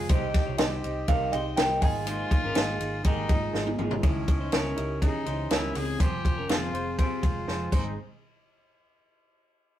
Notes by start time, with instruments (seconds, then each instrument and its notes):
Already playing: clean electric guitar G#3 F4, reed electric piano F4 G#4 C5 D#5 F5 G5, trumpet G#4
0.09 fingered electric bass C2, clean electric guitar C3 G3 C4 D#4 G4 D#5, reed electric piano D#4 G4 C5 D#5, trumpet G4, upright piano C5, kick, hi-hat pedal, ride
0.34 clean electric guitar C4 D#4 G4, kick, snare, ride
0.47 fingered electric bass C2, clean electric guitar F4 C#5
0.58 fingered electric bass C2, clean electric guitar G3 C4 D#4 G4 C5, reed electric piano D#4 G4 C5 D#5, trumpet G4, upright piano D#5, snare, ride
0.83 fingered electric bass C2, clean electric guitar C4 D#4 G4, ride
1.08 fingered electric bass C2, clean electric guitar C3 G3 C4 D#4 G4 A#4, reed electric piano D#4 G4 C5 D#5, upright piano F5, kick, ride
1.32 fingered electric bass C2, clean electric guitar C4 D#4 G4 C5, reed electric piano D#4 G4 C5 D#5, upright piano D#5, ride
1.56 fingered electric bass C2, clean electric guitar G3 C4 D#4 G4 A#4, reed electric piano D#4 G4 C5 D#5, upright piano G5, snare, ride
1.81 fingered electric bass G#1, clean electric guitar A#3 D#4 G#4, reed electric piano D#4 G#4 A#4 D#5, trumpet F4, upright piano G#5, kick, open hi-hat, ride
2.06 clean electric guitar G#3 A#3 D#4 G#4 C5, hi-hat pedal, ride
2.31 clean electric guitar A#3 D#4 G#4, kick, ride
2.44 fingered electric bass G#1, clean electric guitar C#4 A#4
2.54 fingered electric bass G#1, clean electric guitar G#3 A#3 D#4 G#4, reed electric piano D#4 G#4 A#4 D#5, snare, ride
2.79 fingered electric bass G#1, clean electric guitar A#3 D#4 G#4, ride
3.03 fingered electric bass G#1, clean electric guitar G#3 A#3 D#4 G4 G#4, reed electric piano D#4 G#4 A#4 D#5, trumpet D#4, kick, ride
3.28 fingered electric bass G#1, clean electric guitar G#3 A#3 D#4 F4 G#4, reed electric piano D#4 G#4 A#4 D#5, kick, ride
3.53 fingered electric bass G#1, clean electric guitar G#3 A#3 D#4 G#4, reed electric piano D#4 G#4 A#4 D#5, snare
3.67 high tom
3.79 fingered electric bass G#1, clean electric guitar G#3 A#3 D#4 F4 G#4, mid tom
3.91 floor tom
4.02 fingered electric bass C#2, clean electric guitar C#3 G#3 C#4 E4 G#4 C#5 D#5, trumpet C#4, reed electric piano D#4 E4 C#5, kick, ride
4.28 fingered electric bass C#2, clean electric guitar C#4 E4 G#4 D#5, kick, ride
4.40 clean electric guitar D#4 C5
4.52 fingered electric bass C#2, clean electric guitar C#3 G#3 C#4 E4 G#4 A#4 D#5, reed electric piano D#4 E4 C#5, snare, ride
4.76 fingered electric bass C#2, clean electric guitar C#4 E4 G#4 D#5, reed electric piano D#4 E4 G4, ride
5.01 reed electric piano E3 D#4 C#5, clean electric guitar C#4 E4 G#4 D#5, trumpet D#4, kick, ride
5.26 fingered electric bass C#2, clean electric guitar C#4 D#4 E4 G#4 C5 D#5, ride
5.50 fingered electric bass C#2, clean electric guitar C#3 G#3 C#4 E4 G#4 A#4 D#5, reed electric piano D#4 E4 C#5, trumpet E4, snare, ride
5.75 fingered electric bass C#2, clean electric guitar C4 C#4 E4 G#4 D#5, trumpet G#4, open hi-hat, ride
5.99 fingered electric bass F1, clean electric guitar F3 C4 F4 G#4 C5, reed electric piano G#3 F4 C5, trumpet G4, kick, hi-hat pedal, ride
6.24 fingered electric bass F1, clean electric guitar F4 G#4 C5, kick, ride
6.37 clean electric guitar C#4 A#4
6.49 fingered electric bass F1, clean electric guitar F3 C4 F4 G#4 C5, reed electric piano F4 G#4 C5, trumpet F4, snare, ride
6.73 fingered electric bass F1, reed electric piano F4 G#4 C5, clean electric guitar F4 G#4 C5, ride
6.98 clean electric guitar C4 F4 G4 G#4 C5, reed electric piano F4 G#4 C5, trumpet F4, kick, ride
7.22 fingered electric bass F1, clean electric guitar G#3 F4 G#4 C5, kick, ride
7.47 fingered electric bass F1, clean electric guitar F3 C4 F4 G#4 C5, reed electric piano F4 G#4 C5, snare
7.71 fingered electric bass G#1, clean electric guitar G#3 C4 D#4 G#4 C5, reed electric piano D#4 G#4 C5, trumpet D#4, kick, crash